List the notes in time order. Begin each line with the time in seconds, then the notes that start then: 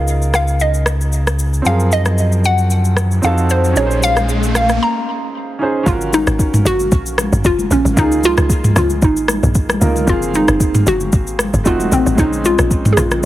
Already playing: C#2 D#4 F4 G#4 A#4 F5
0.08 shaker
0.22 shaker
0.34 F5, cross-stick, shaker
0.48 shaker
0.60 D#5, shaker
0.74 shaker
0.86 cross-stick, shaker
1.01 shaker
1.12 shaker
1.27 cross-stick, shaker
1.39 shaker
1.53 shaker
1.62 F#2 F3 C4, riser, shaker
1.66 G#4 A#4 F5
1.80 shaker
1.92 D#5, shaker
2.05 cross-stick, shaker
2.18 shaker
2.32 shaker
2.44 F#5, shaker
2.58 shaker
2.70 shaker
2.85 shaker
2.97 cross-stick, shaker
3.11 shaker
3.22 F2 C4 D#4 F#4 A4 F5, shaker
3.38 shaker
3.50 C5, shaker
3.64 shaker
3.72 A#1 C#4 D#4, shaker
3.77 G#4 A#4 C#5
3.86 C5
3.91 shaker
4.03 F5, shaker
4.16 cross-stick, shaker
4.29 shaker
4.43 shaker
4.55 F5, cross-stick, shaker
4.69 cross-stick, shaker
4.83 A#5
5.59 C#4 D#4 G#4 C5
5.83 G#1 C#4 F5, kick, low conga, shaker
5.88 F4 F#4 A#4
6.01 shaker
6.12 D#4, high conga, shaker
6.27 G#1, cross-stick, shaker
6.39 kick, shaker
6.54 mid tom, high conga, shaker
6.65 G#1 F#4, low conga, shaker
6.80 high conga, shaker
6.92 A#1, kick, shaker
7.06 shaker
7.18 cross-stick, high conga, shaker
7.33 G#1, mid tom, shaker
7.44 F#1 F4, kick, shaker
7.59 high conga, shaker
7.71 A#1 C#4, low conga, shaker
7.85 G#1, high conga, shaker
7.94 C#2 A#3 D#4, kick, low conga, shaker
7.99 D#4 F4 G#4
8.12 shaker
8.23 F4, high conga, shaker
8.37 C#2, cross-stick, shaker
8.50 kick, shaker
8.64 mid tom, high conga, shaker
8.76 C#2 F4, cross-stick, low conga, shaker
8.90 high conga, shaker
9.02 G#1 D#4, kick, shaker
9.17 shaker
9.28 cross-stick, high conga, shaker
9.43 A#1, mid tom, shaker
9.55 kick, shaker
9.69 cross-stick, high conga, shaker
9.80 C#2 A#3 D#4 F4 A#4, low conga, shaker
9.96 high conga, shaker
10.04 F#1 A#3 C4, kick, low conga, shaker
10.09 F4 G#4 F5
10.22 shaker
10.33 D#4, high conga, shaker
10.48 F#1, cross-stick, shaker
10.60 kick, shaker
10.75 mid tom, high conga, shaker
10.87 F#1 F#4, low conga, shaker
11.00 high conga, shaker
11.13 G#1, kick, shaker
11.27 shaker
11.39 cross-stick, high conga, shaker
11.54 F#1, mid tom, shaker
11.64 F1 A3 C4 D#4 F4 F#4, kick, shaker
11.80 high conga, shaker
11.92 A1 C4, low conga, shaker
12.06 G#1, high conga, shaker
12.15 A#1 G#3 C4, kick, low conga, shaker
12.19 C#4 D#4
12.33 shaker
12.44 F4, high conga, shaker
12.58 A#1, cross-stick, shaker
12.71 kick, shaker
12.85 mid tom, high conga, shaker
12.93 G#4
12.97 A#1 F4, cross-stick, low conga, shaker
13.11 cross-stick, high conga, shaker